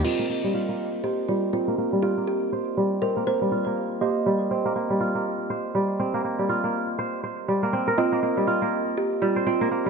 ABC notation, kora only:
X:1
M:4/4
L:1/16
Q:"Swing 16ths" 1/4=121
K:Cm
V:1 name="Kora"
C B, B, G, F B, z2 c z G, z C B, B, G, | F B, z2 c z G, z C B, B, G, F B, z2 | c z G, z C B, B, G, F B, z2 c z G, z | C B, B, G, F B, z2 c z c z G, B, C B |
C B, B, G, F B, z4 G, c C B, B, G, |]